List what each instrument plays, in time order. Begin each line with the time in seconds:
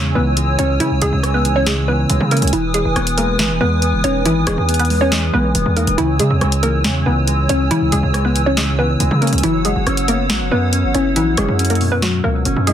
Already playing: 808-style bass E2, clean electric guitar C#3 E3 G#3, analog synth pad C#5 G#5 E6
0.15 808-style bass C#2, clean electric guitar E3, synth pluck B3 B4
0.37 clean electric guitar G#3, closed hi-hat
0.59 808-style bass C#2, synth pluck C#4 C#5, clean electric guitar C#4, closed hi-hat
0.80 808-style bass C#3, clean electric guitar C#3, synth pluck E3 E4, closed hi-hat
0.91 808-style bass C#2
1.02 808-style bass C#2, synth pluck G#3 G#4, closed hi-hat
1.13 808-style bass C#2
1.23 clean electric guitar G#3, cross-stick, closed hi-hat
1.34 synth pluck B3 B4
1.45 clean electric guitar E3, closed hi-hat
1.56 synth pluck C#4 C#5
1.66 clean electric guitar C#3, synth pluck G#3 G#4, snare, closed hi-hat
1.88 clean electric guitar E3, synth pluck B3 B4
2.10 808-style bass C#2, clean electric guitar G#3, closed hi-hat
2.21 808-style bass C#3
2.31 synth pluck A#3 A#4, clean electric guitar C#4, closed hi-hat
2.37 closed hi-hat
2.42 808-style bass C#2, closed hi-hat
2.47 closed hi-hat
2.53 808-style bass E1, synth pluck E3 E4, analog synth pad B4 G#5 D#6, closed hi-hat
2.74 synth pluck G#3 G#4, closed hi-hat
2.85 808-style bass E1
2.96 808-style bass E1, clean electric guitar B3, cross-stick, closed hi-hat
3.07 closed hi-hat
3.18 clean electric guitar G#3, synth pluck A#3 A#4, closed hi-hat
3.39 808-style bass G#1, clean electric guitar E3, snare, closed hi-hat
3.50 808-style bass E1
3.61 808-style bass E2, clean electric guitar G#3, synth pluck B3 B4
3.82 clean electric guitar B3, closed hi-hat
3.93 808-style bass F#1
4.04 808-style bass E1, synth pluck C#4 C#5, clean electric guitar D#4, closed hi-hat
4.25 808-style bass G#1, clean electric guitar E3, synth pluck E3 E4, closed hi-hat
4.47 808-style bass E1, synth pluck G#3 G#4, cross-stick, closed hi-hat
4.58 808-style bass E2
4.69 clean electric guitar B3, closed hi-hat
4.74 closed hi-hat
4.79 synth pluck B3 B4, closed hi-hat
4.85 closed hi-hat
4.90 clean electric guitar G#3, open hi-hat
5.01 synth pluck C#4 C#5
5.12 clean electric guitar E3, synth pluck G#3 G#4, snare, closed hi-hat
5.33 808-style bass B1, clean electric guitar G#3, synth pluck B3 B4
5.55 808-style bass E1, clean electric guitar B3, closed hi-hat
5.66 808-style bass E2
5.76 synth pluck A#3 A#4, clean electric guitar D#4, closed hi-hat
5.87 808-style bass E1, closed hi-hat
5.98 808-style bass C#2, clean electric guitar C#3, synth pluck E3 E4, analog synth pad C#5 G#5 E6, closed hi-hat
6.19 808-style bass C#3, synth pluck G#3 G#4, closed hi-hat
6.31 808-style bass E2
6.41 808-style bass C#2, clean electric guitar G#3, cross-stick, closed hi-hat
6.52 closed hi-hat
6.63 clean electric guitar E3, synth pluck A#3 A#4, closed hi-hat
6.84 808-style bass E2, clean electric guitar C#3, snare, closed hi-hat
7.06 808-style bass C#2, clean electric guitar E3, synth pluck B3 B4
7.27 clean electric guitar G#3, closed hi-hat
7.49 808-style bass C#2, clean electric guitar C#4, synth pluck C#4 C#5, closed hi-hat
7.71 808-style bass C#3, clean electric guitar C#3, synth pluck E3 E4, closed hi-hat
7.82 808-style bass C#2
7.92 808-style bass C#2, synth pluck G#3 G#4, closed hi-hat
8.03 808-style bass C#2
8.14 clean electric guitar G#3, cross-stick, closed hi-hat
8.25 synth pluck B3 B4
8.36 clean electric guitar E3, closed hi-hat
8.46 synth pluck C#4 C#5
8.57 clean electric guitar C#3, synth pluck G#3 G#4, snare, closed hi-hat
8.79 clean electric guitar E3, synth pluck B3 B4
9.00 808-style bass C#2, clean electric guitar G#3, closed hi-hat
9.11 808-style bass C#3
9.21 synth pluck A#3 A#4, clean electric guitar C#4, closed hi-hat
9.27 closed hi-hat
9.33 808-style bass C#2, closed hi-hat
9.38 closed hi-hat
9.43 808-style bass F#1, synth pluck E3 E4, clean electric guitar F#3, analog synth pad C#5 F#5, closed hi-hat
9.65 synth pluck G#3 G#4, closed hi-hat
9.76 808-style bass F#1
9.87 808-style bass F#1, clean electric guitar C#4, cross-stick, closed hi-hat
9.97 closed hi-hat
10.08 synth pluck A#3 A#4, clean electric guitar B3, closed hi-hat
10.29 808-style bass A#1, clean electric guitar F#3, snare, closed hi-hat
10.41 808-style bass F#1
10.51 808-style bass F#2, clean electric guitar B3, synth pluck B3 B4
10.73 clean electric guitar C#4, closed hi-hat
10.84 808-style bass G#1
10.94 808-style bass F#1, synth pluck C#4 C#5, clean electric guitar E4, closed hi-hat
11.16 808-style bass A#1, synth pluck E3 E4, clean electric guitar F#3, closed hi-hat
11.37 808-style bass F#1, synth pluck G#3 G#4, cross-stick, closed hi-hat
11.48 808-style bass F#2
11.59 clean electric guitar C#4, closed hi-hat
11.65 closed hi-hat
11.70 synth pluck A#3 A#4, closed hi-hat
11.75 closed hi-hat
11.81 clean electric guitar B2, open hi-hat
11.92 synth pluck B3 B4
12.02 clean electric guitar F#3, synth pluck F#3 F#4, snare, closed hi-hat
12.24 808-style bass C#2, synth pluck A#3 A#4
12.45 808-style bass F#1, clean electric guitar C#4, closed hi-hat
12.56 808-style bass F#2
12.67 synth pluck G#3 G#4, clean electric guitar E4, closed hi-hat